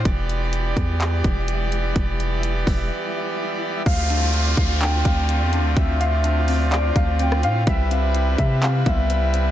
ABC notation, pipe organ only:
X:1
M:4/4
L:1/8
Q:1/4=126
K:Ddor
V:1 name="Pipe organ"
[E,B,Gd]8- | [E,B,Gd]8 | [D,A,CF]8- | [D,A,CF]8 |
[C,G,EB]8 |]